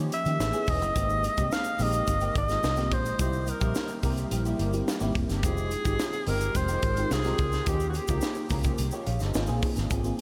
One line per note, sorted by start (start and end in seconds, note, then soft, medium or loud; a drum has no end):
0.00 0.11 F3 medium
0.00 0.26 F3 medium
0.00 0.11 A#3 medium
0.00 0.26 A#3 medium
0.00 0.12 C#4 medium
0.00 0.27 C#4 medium
0.00 0.27 D#4 medium
0.00 0.12 G4 medium
0.00 0.27 G4 medium
0.12 0.71 E5 medium
0.12 muted clean electric guitar stroke soft
0.12 closed hi-hat medium
0.12 shaker soft
0.25 0.36 D#3 loud
0.25 0.40 F3 medium
0.25 0.40 A#3 medium
0.25 0.40 C#4 medium
0.25 0.40 D#4 medium
0.25 0.41 G4 medium
0.25 muted clean electric guitar stroke soft
0.25 closed hi-hat medium
0.25 shaker soft
0.40 0.50 A1 loud
0.40 0.51 A3 medium
0.40 0.51 B3 medium
0.40 0.51 C#4 medium
0.40 0.51 E4 medium
0.40 0.52 G#4 medium
0.40 muted clean electric guitar stroke soft
0.40 snare loud
0.40 shaker medium
0.53 0.66 E3 medium
0.53 0.82 A3 medium
0.53 0.67 B3 medium
0.53 0.83 B3 medium
0.53 0.68 C#4 medium
0.53 0.83 C#4 medium
0.53 0.83 E4 medium
0.53 0.68 G#4 medium
0.53 0.83 G#4 medium
0.53 shaker medium
0.67 0.81 E1 medium
0.67 0.79 E3 medium
0.67 0.79 B3 medium
0.67 0.79 C#4 medium
0.67 0.79 G#4 medium
0.67 1.54 D#5 loud
0.67 kick loud
0.67 open hi-hat medium
0.67 shaker soft
0.81 0.92 F#1 loud
0.81 muted clean electric guitar stroke medium
0.81 closed hi-hat soft
0.81 shaker soft
0.95 1.27 G#1 loud
0.95 1.21 D#3 medium
0.95 1.24 G#3 medium
0.95 1.21 A#3 medium
0.95 1.24 A#3 medium
0.95 1.25 C4 medium
0.95 1.22 C4 medium
0.95 1.25 D#4 medium
0.95 1.25 G4 medium
0.95 1.22 G4 medium
0.95 kick loud
0.95 closed hi-hat loud
0.95 shaker medium
1.10 shaker soft
1.23 muted clean electric guitar stroke soft
1.23 closed hi-hat medium
1.23 shaker soft
1.37 1.48 C2 medium
1.37 1.49 D#3 soft
1.37 1.66 G#3 medium
1.37 1.66 A#3 medium
1.37 1.49 A#3 soft
1.37 1.48 C4 medium
1.37 1.66 C4 medium
1.37 1.66 D#4 medium
1.37 1.48 G4 medium
1.37 1.66 G4 medium
1.37 kick loud
1.37 closed hi-hat medium
1.37 shaker medium
1.51 1.84 F5 loud
1.51 muted clean electric guitar stroke soft
1.51 snare loud
1.51 shaker medium
1.64 muted clean electric guitar stroke medium
1.64 shaker soft
1.79 2.00 A#1 medium
1.79 1.93 D#3 loud
1.79 1.98 G#3 medium
1.79 1.93 A#3 loud
1.79 1.99 A#3 medium
1.79 1.99 C4 medium
1.79 1.92 C4 loud
1.79 1.99 D#4 medium
1.79 1.92 G4 loud
1.79 1.99 A#4 medium
1.79 open hi-hat medium
1.79 shaker medium
1.83 2.37 D#5 loud
1.93 2.05 D#3 medium
1.93 2.05 A#3 soft
1.93 2.05 C4 medium
1.93 2.04 G4 medium
1.93 closed hi-hat medium
1.93 shaker medium
2.07 2.28 G1 loud
2.07 2.36 G#3 medium
2.07 2.36 A#3 medium
2.07 2.36 C4 medium
2.07 2.36 D#4 medium
2.07 2.37 G4 medium
2.07 muted clean electric guitar stroke soft
2.07 kick medium
2.07 closed hi-hat medium
2.07 shaker medium
2.21 2.34 D#3 medium
2.21 2.35 A#3 medium
2.21 2.35 C4 medium
2.21 2.36 G4 medium
2.21 closed hi-hat soft
2.21 shaker soft
2.35 2.56 G#1 medium
2.35 2.95 D#5 loud
2.35 muted clean electric guitar stroke soft
2.35 kick loud
2.35 closed hi-hat medium
2.49 2.68 G#3 medium
2.49 2.68 A#3 medium
2.49 2.69 C4 medium
2.49 2.69 D#4 medium
2.49 2.69 F4 medium
2.49 muted clean electric guitar stroke soft
2.49 snare soft
2.49 closed hi-hat soft
2.49 shaker soft
2.63 2.92 C2 medium
2.63 muted clean electric guitar stroke soft
2.63 snare loud
2.63 shaker medium
2.76 2.90 D#3 medium
2.76 3.06 G#3 medium
2.76 3.06 A#3 medium
2.76 2.91 A#3 medium
2.76 2.91 C4 medium
2.76 3.06 C4 medium
2.76 3.06 D#4 medium
2.76 2.91 G4 medium
2.76 3.06 G4 medium
2.76 snare soft
2.76 closed hi-hat soft
2.76 shaker medium
2.91 3.12 A#1 medium
2.91 3.20 C5 loud
2.91 muted clean electric guitar stroke soft
2.91 kick loud
2.91 closed hi-hat medium
3.06 muted clean electric guitar stroke soft
3.06 closed hi-hat soft
3.06 shaker soft
3.19 3.51 C2 loud
3.19 3.45 G3 medium
3.19 3.48 G3 medium
3.19 3.45 A#3 medium
3.19 3.48 A#3 medium
3.19 3.48 C4 medium
3.19 3.45 E4 medium
3.19 3.48 E4 medium
3.19 3.45 G4 medium
3.19 3.49 G4 medium
3.19 3.52 C5 medium
3.19 kick loud
3.19 closed hi-hat loud
3.19 shaker medium
3.33 shaker soft
3.46 4.05 A#4 medium
3.46 muted clean electric guitar stroke soft
3.46 closed hi-hat medium
3.46 shaker soft
3.60 3.72 A#1 medium
3.60 3.90 G3 medium
3.60 3.73 G3 medium
3.60 3.90 A#3 medium
3.60 3.73 A#3 medium
3.60 3.90 C4 medium
3.60 3.72 E4 medium
3.60 3.90 E4 medium
3.60 3.72 G4 medium
3.60 3.90 G4 medium
3.60 kick loud
3.60 closed hi-hat medium
3.60 shaker medium
3.75 muted clean electric guitar stroke soft
3.75 snare loud
3.75 shaker medium
3.88 muted clean electric guitar stroke soft
3.88 closed hi-hat soft
3.88 shaker soft
4.03 4.24 C2 medium
4.03 4.22 G3 medium
4.03 4.17 G3 medium
4.03 4.22 A#3 medium
4.03 4.17 A#3 medium
4.03 4.22 C4 medium
4.03 4.23 E4 medium
4.03 4.17 E4 loud
4.03 4.16 G4 loud
4.03 4.23 A#4 medium
4.03 kick medium
4.03 open hi-hat medium
4.03 shaker medium
4.17 4.29 G3 medium
4.17 4.29 A#3 medium
4.17 4.29 E4 medium
4.17 4.28 G4 medium
4.17 closed hi-hat medium
4.17 shaker soft
4.31 4.52 A#1 medium
4.31 4.60 G3 medium
4.31 4.60 A#3 medium
4.31 4.60 C4 medium
4.31 4.60 E4 medium
4.31 4.60 G4 loud
4.31 muted clean electric guitar stroke soft
4.31 closed hi-hat medium
4.31 shaker medium
4.45 4.57 G3 medium
4.45 4.57 A#3 medium
4.45 4.57 E4 medium
4.45 4.56 G4 medium
4.45 closed hi-hat soft
4.45 shaker soft
4.59 4.80 G1 loud
4.59 4.73 G3 medium
4.59 4.72 A#3 medium
4.59 4.72 E4 medium
4.59 4.71 G4 medium
4.59 closed hi-hat medium
4.72 4.92 G3 medium
4.72 4.92 A#3 medium
4.72 4.92 C4 medium
4.72 4.92 E4 medium
4.72 4.93 G4 medium
4.72 muted clean electric guitar stroke soft
4.72 closed hi-hat soft
4.72 shaker soft
4.87 muted clean electric guitar stroke soft
4.87 snare loud
4.87 shaker medium
5.00 5.12 G#1 medium
5.00 5.29 G3 medium
5.00 5.14 G3 medium
5.00 5.30 A#3 medium
5.00 5.14 A#3 medium
5.00 5.30 C4 medium
5.00 5.15 E4 medium
5.00 5.30 E4 medium
5.00 5.15 G4 medium
5.00 5.30 G4 medium
5.00 shaker soft
5.15 5.26 F1 medium
5.15 muted clean electric guitar stroke medium
5.15 kick loud
5.15 closed hi-hat medium
5.29 5.43 G1 loud
5.29 muted clean electric guitar stroke soft
5.29 snare soft
5.29 closed hi-hat soft
5.29 shaker soft
5.38 5.46 G4 medium
5.43 5.74 F1 loud
5.43 5.69 D#3 medium
5.43 5.72 G#3 medium
5.43 5.69 G#3 medium
5.43 5.72 C4 medium
5.43 5.69 C4 medium
5.43 5.72 D#4 medium
5.43 5.72 F4 medium
5.43 5.72 G4 medium
5.43 5.70 G4 medium
5.43 6.30 G#4 loud
5.43 kick loud
5.43 closed hi-hat loud
5.43 shaker medium
5.57 shaker soft
5.71 muted clean electric guitar stroke soft
5.71 closed hi-hat medium
5.71 shaker soft
5.84 5.96 G#1 medium
5.84 5.97 D#3 soft
5.84 6.14 G#3 medium
5.84 5.96 G#3 soft
5.84 5.96 C4 medium
5.84 6.14 C4 medium
5.84 6.14 D#4 medium
5.84 6.14 F4 medium
5.84 5.96 G4 medium
5.84 6.14 G4 medium
5.84 kick loud
5.84 closed hi-hat medium
5.84 shaker medium
5.99 muted clean electric guitar stroke soft
5.99 snare loud
5.99 shaker medium
6.13 muted clean electric guitar stroke soft
6.13 closed hi-hat soft
6.13 shaker soft
6.27 6.48 G1 medium
6.27 6.41 D#3 medium
6.27 6.40 G#3 loud
6.27 6.46 G#3 medium
6.27 6.46 C4 medium
6.27 6.40 C4 medium
6.27 6.46 D#4 medium
6.27 6.47 F4 medium
6.27 6.39 G4 loud
6.27 6.47 A#4 medium
6.27 6.58 A#4 loud
6.27 open hi-hat medium
6.27 shaker medium
6.40 6.52 D#3 medium
6.40 6.52 G#3 medium
6.40 6.52 C4 medium
6.40 6.52 G4 medium
6.40 closed hi-hat medium
6.40 shaker medium
6.55 6.76 F1 loud
6.55 6.84 G#3 medium
6.55 6.84 C4 medium
6.55 6.84 D#4 medium
6.55 6.84 F4 medium
6.55 6.84 G4 medium
6.55 7.15 C5 medium
6.55 muted clean electric guitar stroke soft
6.55 kick medium
6.55 closed hi-hat medium
6.55 shaker medium
6.68 6.81 D#3 medium
6.68 6.82 G#3 medium
6.68 6.82 C4 medium
6.68 6.83 G4 medium
6.68 closed hi-hat soft
6.68 shaker medium
6.82 7.04 G#1 loud
6.82 muted clean electric guitar stroke soft
6.82 kick loud
6.82 closed hi-hat medium
6.96 7.16 G#3 medium
6.96 7.16 C4 medium
6.96 7.16 D#4 medium
6.96 7.16 F4 medium
6.96 7.16 G4 medium
6.96 muted clean electric guitar stroke medium
6.96 closed hi-hat medium
6.96 shaker soft
7.11 7.32 C2 medium
7.11 7.71 G#4 loud
7.11 muted clean electric guitar stroke soft
7.11 snare loud
7.11 shaker medium
7.24 7.38 D#3 medium
7.24 7.53 G#3 medium
7.24 7.38 G#3 medium
7.24 7.53 C4 medium
7.24 7.38 C4 medium
7.24 7.54 D#4 medium
7.24 7.54 F4 medium
7.24 7.39 G4 medium
7.24 7.54 A#4 medium
7.24 snare soft
7.24 closed hi-hat soft
7.24 shaker soft
7.38 7.60 C#2 medium
7.38 kick loud
7.38 closed hi-hat medium
7.52 muted clean electric guitar stroke soft
7.52 snare soft
7.52 closed hi-hat soft
7.52 shaker soft
7.66 7.98 D#2 loud
7.66 7.92 F3 medium
7.66 7.95 A#3 medium
7.66 7.93 A#3 medium
7.66 7.95 C#4 medium
7.66 7.93 C#4 medium
7.66 7.96 D#4 medium
7.66 7.96 F4 medium
7.66 7.96 G4 medium
7.66 7.93 G4 medium
7.66 7.89 G4 medium
7.66 kick loud
7.66 closed hi-hat loud
7.66 shaker medium
7.80 shaker soft
7.90 7.99 F#4 medium
7.90 shaker soft
7.95 8.52 G4 loud
7.95 muted clean electric guitar stroke soft
7.95 closed hi-hat medium
8.08 8.19 C#2 medium
8.08 8.20 F3 soft
8.08 8.37 A#3 medium
8.08 8.20 A#3 soft
8.08 8.37 C#4 medium
8.08 8.20 C#4 medium
8.08 8.38 D#4 medium
8.08 8.38 F4 medium
8.08 8.20 G4 medium
8.08 8.38 A#4 medium
8.08 kick loud
8.08 closed hi-hat medium
8.08 shaker medium
8.21 muted clean electric guitar stroke soft
8.21 snare loud
8.21 shaker medium
8.35 muted clean electric guitar stroke soft
8.35 shaker soft
8.49 8.71 C#2 medium
8.49 8.65 F3 loud
8.49 8.70 A#3 medium
8.49 8.64 A#3 medium
8.49 8.70 C#4 medium
8.49 8.64 C#4 loud
8.49 8.70 D#4 medium
8.49 8.70 F4 medium
8.49 8.63 G4 medium
8.49 8.70 A#4 medium
8.49 kick loud
8.49 open hi-hat medium
8.49 shaker medium
8.63 8.76 F3 medium
8.63 8.76 A#3 medium
8.63 8.76 C#4 medium
8.63 8.75 G4 medium
8.63 kick loud
8.63 closed hi-hat medium
8.63 shaker medium
8.78 8.89 C2 medium
8.78 muted clean electric guitar stroke soft
8.78 closed hi-hat medium
8.78 shaker medium
8.91 9.06 F3 medium
8.91 9.06 A#3 medium
8.91 9.06 C#4 medium
8.91 9.07 G4 medium
8.91 9.06 A#4 medium
8.91 9.06 C#5 medium
8.91 shaker soft
9.06 9.17 A#1 loud
9.06 9.20 C#5 medium
9.06 9.20 F5 medium
9.06 muted clean electric guitar stroke soft
9.06 closed hi-hat medium
9.19 9.31 G1 loud
9.19 9.47 C5 medium
9.19 9.47 D#5 medium
9.19 muted clean electric guitar stroke soft
9.19 snare soft
9.19 closed hi-hat medium
9.19 shaker soft
9.34 9.49 G#1 loud
9.34 9.46 A#3 medium
9.34 9.46 C4 medium
9.34 9.46 D#4 medium
9.34 9.46 F4 medium
9.34 9.46 G#4 loud
9.34 muted clean electric guitar stroke soft
9.34 snare loud
9.34 shaker medium
9.46 9.59 A#1 medium
9.46 9.60 F3 medium
9.46 9.77 A#3 medium
9.46 9.61 A#3 medium
9.46 9.77 C4 medium
9.46 9.62 C4 medium
9.46 9.77 D#4 medium
9.46 9.77 F4 medium
9.46 9.62 G#4 medium
9.46 9.77 G#4 loud
9.46 closed hi-hat soft
9.46 shaker soft
9.62 muted clean electric guitar stroke medium
9.62 kick loud
9.62 open hi-hat medium
9.76 9.87 G#1 medium
9.76 muted clean electric guitar stroke soft
9.76 snare soft
9.76 closed hi-hat soft
9.76 shaker soft
9.90 10.11 G#1 medium
9.90 10.16 F3 medium
9.90 10.00 A#3 medium
9.90 10.16 A#3 medium
9.90 10.00 C4 medium
9.90 10.17 C4 medium
9.90 10.00 D#4 medium
9.90 10.00 F4 medium
9.90 10.17 G#4 medium
9.90 10.01 G#4 medium
9.90 kick loud
9.90 closed hi-hat loud
9.90 shaker medium
10.03 10.21 A#3 medium
10.03 10.21 C4 medium
10.03 10.21 D#4 medium
10.03 10.21 F4 medium
10.03 10.21 G#4 medium
10.03 closed hi-hat soft
10.03 shaker soft